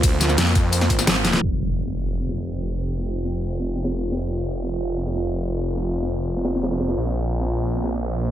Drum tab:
RD |x---x---x---x---|----------------|----------------|----------------|
HH |x-x-xxx-xxx-xxxx|----x---x-x-o-x-|x-x-x-x-x-x-x--x|x---x-x-x-x-o-x-|
TB |x-xxx-x-x-xxx-x-|----------------|----------------|----------------|
SD |--oooo---o-ooooo|-o---o---ooo----|--o--o---o-oo--o|-o---o---ooo----|
BD |o-----o---o-----|----------------|----------------|----------------|

RD |----------------|----------------|
HH |x-x-x-x-x-xxxxxx|x-x-x-x-x-x-o-x-|
TB |----------------|----------------|
SD |--o--o---ooooooo|-o---o---ooo----|
BD |----------------|----------------|